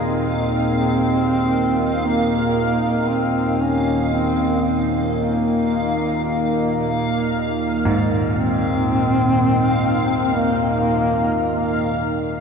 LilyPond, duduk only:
\new Staff \with { instrumentName = "Duduk" } { \time 4/4 \tempo 4 = 58 c'2 bes4 c'8 des'8 | c'8. r16 bes4 bes4. r8 | c'2 bes4. r8 | }